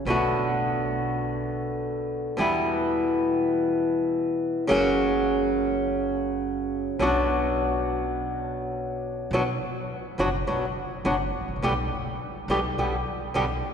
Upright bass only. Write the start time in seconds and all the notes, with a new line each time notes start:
0.05 B1
2.39 E2
4.70 F#1
6.99 B1
9.31 B1
10.18 F#1
10.48 B1
11.05 F#1
11.41 G#1
11.48 A1
11.56 A#1
11.64 B1
12.48 B1
12.78 B1
13.35 B1